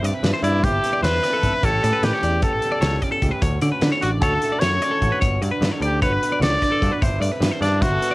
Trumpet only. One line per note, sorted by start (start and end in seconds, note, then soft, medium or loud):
0.43 0.65 E4 medium
0.64 1.03 G4 medium
1.03 1.66 B4 medium
1.65 2.05 A4 medium
2.04 2.43 G4 medium
2.43 2.99 A4 medium
4.01 4.11 F#4 medium
4.21 4.61 A4 medium
4.59 5.20 C#5 medium
5.85 6.02 G4 medium
6.02 6.39 B4 medium
6.42 6.98 D5 medium
7.61 7.84 D4 medium
7.82 8.14 F#4 medium